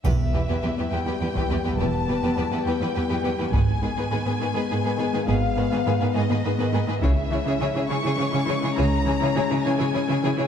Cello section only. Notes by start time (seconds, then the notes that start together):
0.05 E2
0.35 E2
0.49 E2
0.64 E2
0.78 E2
0.92 E2
1.07 E2
1.21 E2
1.35 E2
1.51 E2
1.65 E2
1.79 E2
2.09 E2
2.23 E2
2.38 E2
2.52 E2
2.66 E2
2.81 E2
2.96 E2
3.10 E2
3.26 E2
3.40 E2
3.54 G#2
3.83 G#2
3.97 G#2
4.11 G#2
4.26 G#2
4.40 G#2
4.55 G#2
4.70 G#2
4.84 G#2
4.99 G#2
5.13 G#2
5.29 G#2
5.57 G#2
5.72 G#2
5.86 G#2
6.01 G#2
6.15 G#2
6.30 G#2
6.45 G#2
6.59 G#2
6.73 G#2
6.88 G#2
7.02 C#3
7.32 C#3
7.46 C#3
7.61 C#3
7.75 C#3
7.90 C#3
8.05 C#3
8.19 C#3
8.34 C#3
8.49 C#3
8.63 C#3
8.78 C#3
9.07 C#3
9.22 C#3
9.37 C#3
9.52 C#3
9.66 C#3
9.81 C#3
9.95 C#3
10.10 C#3
10.24 C#3
10.38 C#3